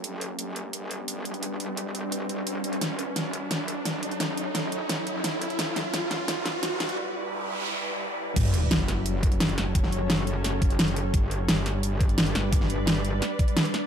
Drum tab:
CC |----------------|----------------|----------------|----------------|
HH |x-x-x-x-x-x-x-xx|x-x-x-x-x-x-x-xx|x-x-x-x-x-x-x-xx|x-x-x-x-x-x-x-xx|
SD |----------------|----------------|o---o---o---o---|o---o---o---o---|
BD |----------------|----------------|----------------|----------------|

CC |----------------|----------------|x---------------|----------------|
HH |x-x-x-x-x-x-x-xx|----------------|x-x-x-x-x-xxxxx-|x-x-x-x-x-xxxxx-|
SD |o-o-o-o-o-o-o-o-|----------------|----o-o-----o-o-|-o--o---o---o---|
BD |----------------|----------------|o---------o-----|o---------o-----|

CC |----------------|----------------|
HH |x-x-x-x-x-xxxxx-|x-x-x-x-x-xxxxx-|
SD |----o-o-----o-o-|-o--o---o---o-o-|
BD |o---------o-----|o---------o-----|